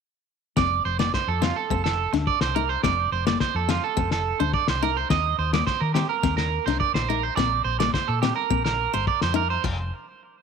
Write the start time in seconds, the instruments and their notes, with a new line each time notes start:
0.57 fingered electric bass F1, steel-string acoustic guitar C4, clean electric guitar D5, kick, snare
0.85 fingered electric bass F1, clean electric guitar C5
0.99 steel-string acoustic guitar A#3, clean electric guitar D5, snare
1.14 clean electric guitar C5, kick, snare
1.28 fingered electric bass F2, clean electric guitar A4
1.41 steel-string acoustic guitar C4, clean electric guitar F4, snare
1.56 clean electric guitar A4
1.70 fingered electric bass F1, steel-string acoustic guitar C4, kick
1.84 clean electric guitar A4, snare
2.13 fingered electric bass D2, steel-string acoustic guitar D4, muted clean electric guitar stroke, snare
2.27 clean electric guitar D5, kick
2.41 fingered electric bass C2, clean electric guitar C5, snare
2.55 steel-string acoustic guitar D#4, clean electric guitar A#4
2.69 clean electric guitar C5
2.83 fingered electric bass F1, steel-string acoustic guitar C4, clean electric guitar D5, kick, snare
3.12 fingered electric bass F1, clean electric guitar C5
3.27 steel-string acoustic guitar A#3, clean electric guitar D5, snare
3.40 clean electric guitar C5, kick, snare
3.55 fingered electric bass F2, clean electric guitar A4
3.69 steel-string acoustic guitar C4, clean electric guitar F4, snare
3.84 clean electric guitar A4
3.97 fingered electric bass F1, steel-string acoustic guitar C4, kick
4.11 clean electric guitar A4, snare
4.40 fingered electric bass D2, steel-string acoustic guitar D4, clean electric guitar C5
4.54 clean electric guitar D5, kick
4.68 fingered electric bass C2, clean electric guitar C5, snare
4.83 steel-string acoustic guitar D#4, clean electric guitar A#4
4.97 clean electric guitar C5
5.10 fingered electric bass D#2, steel-string acoustic guitar C4, clean electric guitar D#5, kick, snare
5.38 fingered electric bass D#2, clean electric guitar C5
5.53 steel-string acoustic guitar A#3, clean electric guitar D5, snare
5.67 clean electric guitar C5, kick, snare
5.80 fingered electric bass D#3, clean electric guitar A#4
5.94 steel-string acoustic guitar C4, clean electric guitar G4, snare
6.09 clean electric guitar A#4
6.23 fingered electric bass D#2, steel-string acoustic guitar C4, kick, snare
6.37 clean electric guitar A#4, snare
6.66 fingered electric bass C2, steel-string acoustic guitar D4, clean electric guitar C5, snare
6.80 clean electric guitar D5, kick
6.94 fingered electric bass A#1, clean electric guitar C5, snare
7.09 steel-string acoustic guitar D#4, clean electric guitar A#4
7.23 clean electric guitar C5
7.36 fingered electric bass A#1, steel-string acoustic guitar C4, clean electric guitar D5, kick, snare
7.64 fingered electric bass A#1, clean electric guitar C5
7.80 steel-string acoustic guitar A#3, clean electric guitar D5, snare
7.94 clean electric guitar C5, kick, snare
8.08 fingered electric bass A#2, clean electric guitar A4
8.22 steel-string acoustic guitar C4, clean electric guitar G4, snare
8.36 clean electric guitar A#4
8.50 fingered electric bass A#1, steel-string acoustic guitar C4, kick
8.65 clean electric guitar A#4, snare
8.93 fingered electric bass G1, clean electric guitar C5, muted steel-string acoustic guitar stroke
9.07 clean electric guitar D5, kick
9.21 fingered electric bass F2, clean electric guitar C5, snare
9.34 steel-string acoustic guitar D#4, clean electric guitar A#4
9.50 clean electric guitar C5
9.64 fingered electric bass F1, steel-string acoustic guitar F3, muted clean electric guitar stroke, kick, crash